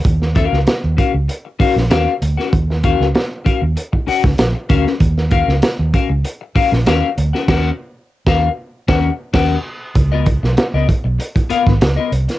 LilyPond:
<<
  \new Staff \with { instrumentName = "Clean electric guitar" } { \time 4/4 \key ees \minor \tempo 4 = 97 r8 <des' ges' bes' f''>16 r8. <des' ges' bes' f''>16 r8. <des' ges' bes' f''>16 r16 <des' ges' bes' f''>16 r8 <des' ges' bes' ges''>16 | r8 <des' ges' bes' f''>16 r8. <des' ges' bes' f''>16 r8. <des' ges' bes' ges''>16 r8. <des' ges' bes' f''>16 r16 | r8 <des' ges' bes' f''>16 r8. <des' ges' bes' f''>16 r8. <des' ges' bes' f''>16 r16 <des' ges' bes' f''>16 r8 <des' ges' bes' ges''>16 | <des' ges' bes' ges''>8 r8. <des' ges' bes' f''>8 r8 <des' ges' bes' ges''>8 r16 <des' ges' bes' ges''>8 r8 |
r16 <ces' f' bes' ees''>16 r8. <ces' f' bes' ees''>16 r4 <ces' f' bes' f''>16 r8 <ces' f' bes' ees''>16 r8 | }
  \new Staff \with { instrumentName = "Fingered electric bass" } { \clef bass \time 4/4 \key ees \minor ees,8. des,16 r16 ees,16 r16 des,16 r8. bes,,16 ees,16 r16 d,16 r16 | ees,8. des,16 r8. ees,16 r8. des,16 bes,,16 r16 d,16 r16 | ees,8. des,16 r16 ees,16 r16 des,16 r8. bes,,16 ees,16 r16 d,16 r16 | ees,8 r8. ees,8 r8 ees,8 r16 ees,8 r8 |
des,8. ces,16 r16 des,16 r16 ces,16 r8. aes,,16 des,16 r16 c,16 r16 | }
  \new DrumStaff \with { instrumentName = "Drums" } \drummode { \time 4/4 <hh bd>16 sn16 <hh bd>16 sn16 <hh sn>8 <hh bd>8 hh8 <hho bd>16 sn16 <hh sn>8 hh16 sn16 | <hh bd>16 sn16 <hh bd>16 sn16 <hh sn>8 <hh bd>8 hh16 bd16 hho16 <bd sn>16 <hh sn>8 <hh bd>16 sn16 | <hh bd>16 sn16 <hh bd>16 sn16 <hh sn>8 <hh bd>8 hh8 <hho bd>16 sn16 <hh sn>8 hh16 sn16 | <cymc bd sn>4 r16 <bd sn>8. r16 <bd sn>8. <cymc bd sn>4 |
<hh bd>8 <hh bd>16 sn16 <hh sn>8 <hh bd>8 hh16 <hh bd>16 hh16 <bd sn>16 <hh sn>8 hh16 <hh sn>16 | }
>>